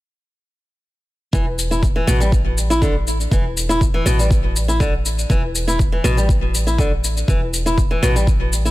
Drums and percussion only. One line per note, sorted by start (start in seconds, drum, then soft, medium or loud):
1.33 kick loud
1.33 shaker soft
1.59 shaker medium
1.72 shaker soft
1.83 kick loud
1.83 shaker soft
2.08 shaker medium
2.21 shaker medium
2.32 kick loud
2.32 shaker soft
2.58 shaker medium
2.71 shaker medium
2.82 kick loud
2.82 shaker soft
3.07 shaker medium
3.21 shaker soft
3.31 kick loud
3.31 shaker soft
3.57 shaker medium
3.70 shaker soft
3.81 kick loud
3.81 shaker soft
4.06 shaker medium
4.20 shaker medium
4.31 kick loud
4.31 shaker soft
4.56 shaker medium
4.69 shaker medium
4.80 kick loud
4.80 shaker soft
5.06 shaker medium
5.19 shaker medium
5.30 kick loud
5.30 shaker soft
5.55 shaker medium
5.68 shaker medium
5.79 kick loud
5.79 shaker soft
6.05 shaker medium
6.18 shaker medium
6.29 kick loud
6.29 shaker soft
6.55 shaker medium
6.68 shaker medium
6.78 kick loud
6.78 shaker soft
7.04 shaker medium
7.17 shaker medium
7.28 kick loud
7.28 shaker soft
7.54 shaker medium
7.67 shaker medium
7.78 kick loud
7.78 shaker soft
8.03 shaker medium
8.16 shaker medium
8.27 kick loud
8.27 shaker soft
8.53 shaker medium
8.66 shaker medium